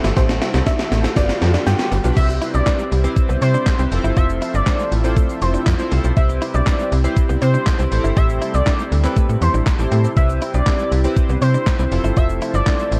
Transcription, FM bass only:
0.04 G1
0.17 A1
0.54 C2
0.92 A1
1.16 G1
1.42 F2
1.67 G2
1.92 G1
2.04 B1
2.17 C2
2.55 B1
2.92 C2
3.29 C2
3.42 C3
3.79 C2
3.92 F1
4.04 G1
4.17 F1
4.54 G1
4.92 A1
5.42 F1
5.67 F2
5.92 C2
6.04 B1
6.17 C2
6.54 B1
6.92 C2
7.29 C2
7.42 C3
7.79 C2
7.92 A1
8.04 G1
8.17 A1
8.54 C2
8.92 D2
9.29 A2
9.41 E2
9.54 A1
9.79 A1
9.92 A2
10.17 C2
10.54 B1
10.92 C2
11.29 C2
11.42 C3
11.79 C2
11.92 F1
12.04 G1
12.17 F1
12.54 G1
12.92 A1

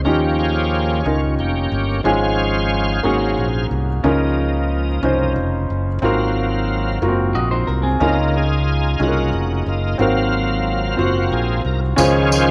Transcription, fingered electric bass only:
0.06 D#2
1.06 C#2
1.39 F1
1.72 G1
2.05 G#1
3.04 G#1
3.38 A#1
3.71 C2
4.04 C#2
5.03 C2
5.36 F1
5.70 F#1
6.02 G#1
7.02 F#1
7.35 A#1
7.68 C2
8.00 C#2
9.00 C2
9.33 F1
9.66 F#1
9.99 G#1
10.99 F#1
11.32 A#1
11.65 C2
11.98 C#2

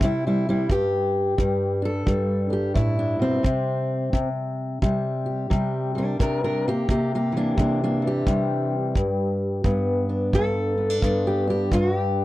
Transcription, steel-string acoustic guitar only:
0.00 C3 G3
0.05 E4
0.27 G3 E4
0.49 G3 E4
0.70 G2 G4
1.38 G2 G3
1.82 D4 A4
2.06 G2 G3
2.50 D4 G4
2.74 A2 E4
2.99 D4
3.19 B2 C4
3.43 C3
4.13 C3
4.82 C3 G3
5.26 G4
5.50 C3 G3
5.95 G3 D4 A#4
6.19 C3 D4 A#4
6.44 D4 A#4
6.68 A#3 G4
6.89 C3 A#3 G4
7.15 A#3 G4
7.32 E3
7.37 A#3 D4
7.57 C3 A#3 D4
7.84 A#3 D4
8.02 E3
8.07 G4
8.27 C3 G3
8.96 G2
9.65 G2 B3
10.09 D4
10.33 G2 A4
10.78 B3
10.90 D4
11.02 G2 B3
11.27 G4
11.47 D4 G4
11.72 G2 F#4
11.98 G4

